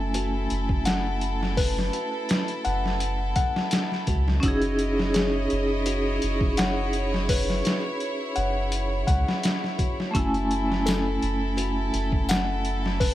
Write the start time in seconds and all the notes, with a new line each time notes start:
Already playing: F#1 A3 C#4 E4 A4 G#5
0.14 F#4, closed hi-hat
0.50 F#1, closed hi-hat
0.69 kick
0.85 F#5, snare, closed hi-hat
1.21 closed hi-hat
1.43 snare
1.57 B4, kick, open hi-hat
1.78 snare
1.93 F#4, closed hi-hat
2.29 snare, closed hi-hat
2.48 closed hi-hat
2.65 F#1 F#5, closed hi-hat
2.86 snare
3.00 closed hi-hat
3.36 F#5, kick, closed hi-hat
3.56 snare
3.71 snare, closed hi-hat
3.92 snare
4.07 C#2 F#4, kick, closed hi-hat
4.28 snare
4.40 F#1 C#4 D#4 E4 F#4 C#5 D#5, kick, closed hi-hat
4.45 E4 G#4
4.62 closed hi-hat
4.79 closed hi-hat
4.99 snare
5.14 G#4, snare, closed hi-hat
5.50 F#1, closed hi-hat
5.86 F#4, closed hi-hat
6.22 F#1, closed hi-hat
6.41 kick
6.57 F#5, snare, closed hi-hat
6.93 closed hi-hat
7.14 snare
7.29 E4 B4, kick, open hi-hat
7.50 snare
7.64 F#4, snare, closed hi-hat
8.00 closed hi-hat
8.36 F#1 F#5, closed hi-hat
8.72 closed hi-hat
9.07 C#2 F#5, kick, closed hi-hat
9.29 snare
9.43 snare, closed hi-hat
9.64 snare
9.79 F#4, kick, closed hi-hat
10.00 snare
10.11 A3 C#4 F#4 A4, kick, closed hi-hat
10.15 F#1 E4 G#5
10.34 closed hi-hat
10.51 closed hi-hat
10.72 snare
10.86 A4, snare, closed hi-hat, tambourine
11.22 F#1, closed hi-hat
11.57 F#4, closed hi-hat
11.94 F#1, closed hi-hat
12.12 kick
12.29 F#5, snare, closed hi-hat, tambourine
12.65 closed hi-hat
12.86 snare
13.00 B4, kick, open hi-hat